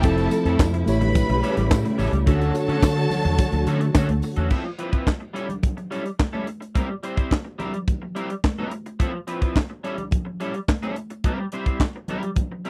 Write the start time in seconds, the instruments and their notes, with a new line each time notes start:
Already playing: string section C3 E4
0.03 fingered electric bass F1, tine electric piano F3 C4 E4 A4, string section F3 A3, clean electric guitar A3 C4 E4 A4, violin section A4 A5, kick, closed hi-hat, tambourine, muted conga
0.18 closed hi-hat
0.31 muted clean electric guitar stroke, closed hi-hat, tambourine, muted conga
0.45 fingered electric bass F2, clean electric guitar A3 C4 E4 A4, closed hi-hat
0.59 fingered electric bass F2, kick, snare, clap, tambourine, high conga
0.74 muted clean electric guitar stroke, closed hi-hat
0.86 fingered electric bass A1, string section C#3 G3 A3, tine electric piano A3 E4 G4 C#5, violin section B4 B5, closed hi-hat, tambourine
1.01 muted clean electric guitar stroke, closed hi-hat, low conga
1.15 kick, closed hi-hat, tambourine, muted conga, low conga
1.29 fingered electric bass B1, muted clean electric guitar stroke, closed hi-hat
1.43 clean electric guitar G3 C#4 E4 A4, closed hi-hat, tambourine
1.57 fingered electric bass A1, muted clean electric guitar stroke, closed hi-hat
1.71 fingered electric bass A2, kick, snare, clap, tambourine, high conga
1.85 muted clean electric guitar stroke, closed hi-hat, high conga
1.98 fingered electric bass A1, clean electric guitar G3 C#4 E4 A4, open hi-hat, tambourine
2.13 fingered electric bass C#2, muted clean electric guitar stroke, closed hi-hat
2.25 fingered electric bass D2, tine electric piano D3 D4 F#4 C#5, string section D3 F#3 F#4 C#5, clean electric guitar A3 C#4 F#4 A4, violin section A4 A5, kick, closed hi-hat, muted conga
2.41 closed hi-hat
2.54 muted clean electric guitar stroke, closed hi-hat, tambourine
2.68 fingered electric bass D3, clean electric guitar A3 C#4 F#4 A4, closed hi-hat
2.83 fingered electric bass D3, muted clean electric guitar stroke, kick, snare, clap, tambourine, high conga
2.97 muted clean electric guitar stroke, closed hi-hat
3.10 snare, open hi-hat, tambourine, low conga
3.24 fingered electric bass E2, muted clean electric guitar stroke, closed hi-hat
3.38 kick, closed hi-hat, tambourine, muted conga, low conga
3.52 fingered electric bass D2, muted clean electric guitar stroke, closed hi-hat
3.66 fingered electric bass D3, clean electric guitar A3 C#4 F#4 A4, closed hi-hat, tambourine
3.81 muted clean electric guitar stroke, closed hi-hat
3.95 fingered electric bass D3, clean electric guitar A3 C#4 F#4 A4, kick, snare, clap, tambourine, high conga
4.09 fingered electric bass D2, muted clean electric guitar stroke, closed hi-hat, high conga
4.22 muted clean electric guitar stroke, open hi-hat, tambourine
4.36 fingered electric bass E2, clean electric guitar A3 C#4 F#4 A4, closed hi-hat
4.50 clean electric guitar F3 C4 E4 A4, kick, crash, muted conga
4.65 muted clean electric guitar stroke
4.79 clean electric guitar F3 C4 E4 B4, closed hi-hat
4.92 clean electric guitar F3 C4 E4 B4, kick, closed hi-hat
5.07 kick, snare, clap, high conga
5.20 muted clean electric guitar stroke
5.33 clean electric guitar G3 C#4 E4 A4, closed hi-hat
5.48 muted clean electric guitar stroke, closed hi-hat, low conga
5.63 kick, closed hi-hat, muted conga, low conga
5.77 muted clean electric guitar stroke, closed hi-hat
5.91 clean electric guitar G3 C#4 E4 A4, closed hi-hat
6.05 muted clean electric guitar stroke, closed hi-hat
6.19 muted clean electric guitar stroke, kick, snare, clap, high conga
6.33 clean electric guitar G3 C#4 E4 A4, high conga
6.47 muted clean electric guitar stroke, closed hi-hat
6.61 muted clean electric guitar stroke, closed hi-hat
6.75 clean electric guitar G3 C4 E4 A#4, kick, closed hi-hat, muted conga
6.89 muted clean electric guitar stroke
7.03 clean electric guitar G3 C4 E4 C5, closed hi-hat
7.16 clean electric guitar G3 C4 E4 C5, kick, closed hi-hat
7.31 kick, snare, clap, high conga
7.45 muted clean electric guitar stroke
7.58 clean electric guitar G3 C4 E4 A#4, closed hi-hat, low conga
7.73 muted clean electric guitar stroke, closed hi-hat
7.88 kick, closed hi-hat, muted conga, low conga
8.02 muted clean electric guitar stroke
8.15 clean electric guitar G3 C4 E4 A#4, closed hi-hat
8.30 muted clean electric guitar stroke, closed hi-hat
8.44 muted clean electric guitar stroke, kick, snare, clap, high conga
8.59 clean electric guitar G3 C4 E4 A#4, high conga
8.71 muted clean electric guitar stroke, closed hi-hat
8.86 muted clean electric guitar stroke, closed hi-hat
8.99 clean electric guitar F3 C4 E4 A4, kick, closed hi-hat, muted conga
9.13 muted clean electric guitar stroke
9.27 clean electric guitar F3 C4 E4 B4, closed hi-hat
9.41 clean electric guitar F3 C4 E4 B4, kick, closed hi-hat
9.56 kick, snare, clap, high conga
9.70 muted clean electric guitar stroke
9.84 clean electric guitar G3 C#4 E4 A4, closed hi-hat
9.97 muted clean electric guitar stroke, closed hi-hat, low conga
10.11 kick, closed hi-hat, muted conga, low conga
10.25 muted clean electric guitar stroke
10.40 clean electric guitar G3 C#4 E4 A4, closed hi-hat
10.54 muted clean electric guitar stroke, closed hi-hat
10.68 muted clean electric guitar stroke, kick, snare, clap, high conga
10.82 clean electric guitar G3 C#4 E4 A4, closed hi-hat, high conga
10.96 muted clean electric guitar stroke, closed hi-hat
11.10 muted clean electric guitar stroke, closed hi-hat
11.24 clean electric guitar G3 C4 E4 A#4, kick, closed hi-hat, muted conga
11.40 muted clean electric guitar stroke
11.52 clean electric guitar G3 C4 E4 C5, closed hi-hat
11.66 clean electric guitar G3 C4 E4 C5, kick, closed hi-hat
11.80 kick, snare, clap, high conga
11.96 muted clean electric guitar stroke
12.08 clean electric guitar G3 C4 E4 A#4, closed hi-hat, low conga
12.23 muted clean electric guitar stroke, closed hi-hat
12.36 kick, closed hi-hat, muted conga, low conga
12.52 muted clean electric guitar stroke
12.65 clean electric guitar G3 C4 E4 A#4, closed hi-hat